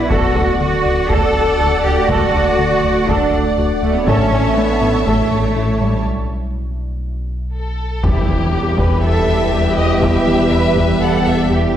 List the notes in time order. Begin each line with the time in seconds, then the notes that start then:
Already playing: B1 F#3 E4
0.09 D1 D2 A3 D4 F#4 A4 D5 F#5, taiko
0.35 D2 D4
0.60 D3 F#4
0.85 D2
1.10 D2 A4, taiko
1.35 D2
1.59 D2 F#4
1.84 D2 G4
2.08 D2 F#4 A4, taiko
2.33 D2 D4
2.59 D3
2.84 D2
3.08 D2 D4 A4, taiko
3.33 D2
3.58 D2 F#4
3.83 D2 A3
3.95 B3
4.07 A1 A2 C#4 E4 A4 C#5 E5 A5, taiko
4.32 A1 A2 C#4
4.56 A3 B3
4.82 A2
5.06 A1 A2 A3 A4, taiko
5.32 A2
5.55 A1 A2 E4
5.81 A2 G3
6.05 B1
7.54 A4
8.03 E1 E2 E3 G3 B3 E4 G4 B4 E5, taiko, impact
8.28 E3
8.53 E2 G4
8.78 E2 B4, taiko
9.02 E2 A4 E5
9.28 E2
9.53 E2 G4
9.77 E2 D#5
10.01 E2 E5, taiko
10.27 E3
10.52 E2 B4
10.77 E2, taiko
11.01 E2 A4 F#5
11.27 E2 E5
11.51 E2 G4